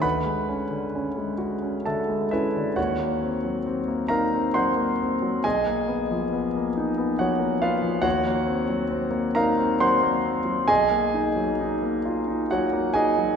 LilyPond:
<<
  \new Staff \with { instrumentName = "Grand piano" } { \time 3/4 \key b \mixolydian \tempo 4 = 67 <b' fis'' b''>2 <a' e'' a''>8 <e' b' e''>8 | <fis' cis'' fis''>4. <ais' eis'' ais''>8 <bis' fis'' bis''>4 | <gis' dis'' gis''>2 <fis' cis'' fis''>8 <eis' b' eis''>8 | \key ees \dorian <ges' des'' ges''>4. <bes' f'' bes''>8 <c'' ges'' c'''>4 |
<aes' dis'' aes''>2 <fis' des'' fis''>8 <aes' dis'' aes''>8 | }
  \new Staff \with { instrumentName = "Grand piano" } { \time 3/4 \key b \mixolydian d,16 gis16 cis'16 d16 cis'16 gis16 fis'16 cis'16 d16 gis16 cis'16 d16 | dis,16 ais16 bis16 fis16 bis16 ais16 dis'16 bis16 fis16 ais16 bis16 fis16 | b,,16 ais16 b16 eis16 b16 ais16 dis'16 b16 eis16 ais16 b16 eis16 | \key ees \dorian ees,16 bes16 c'16 ges16 c'16 bes16 ees'16 c'16 ges16 bes16 c'16 ges16 |
b,,16 ais16 dis'16 fis16 dis'16 ais16 eis'16 dis'16 fis16 ais16 dis'16 fis16 | }
>>